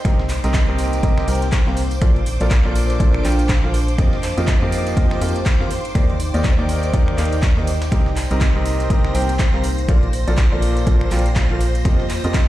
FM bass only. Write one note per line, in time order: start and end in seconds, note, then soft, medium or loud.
0.05 0.41 C2 loud
0.44 0.66 C2 loud
0.69 1.01 C2 loud
1.03 1.26 C2 loud
1.28 1.64 C2 loud
1.67 2.00 C2 loud
2.02 2.38 A#1 loud
2.41 2.62 A#1 medium
2.65 2.98 A#1 loud
3.00 3.23 A#1 loud
3.25 3.61 A#1 loud
3.64 3.96 A#1 loud
3.98 4.35 F2 loud
4.38 4.59 F2 loud
4.62 4.95 F2 loud
4.97 5.19 F2 loud
5.21 5.58 F2 loud
5.60 5.67 F2 loud
5.95 6.31 D#2 loud
6.34 6.56 D#2 medium
6.59 6.92 D#2 medium
6.93 7.16 D#2 medium
7.18 7.54 D#2 loud
7.57 7.90 D#2 loud
7.92 8.28 C2 loud
8.31 8.53 C2 loud
8.55 8.88 C2 loud
8.90 9.13 C2 loud
9.15 9.51 C2 loud
9.54 9.87 C2 loud
9.88 10.25 A#1 loud
10.28 10.49 A#1 medium
10.52 10.85 A#1 loud
10.87 11.09 A#1 medium
11.11 11.48 A#1 loud
11.50 11.83 A#1 loud
11.85 12.21 F2 loud
12.24 12.46 F2 loud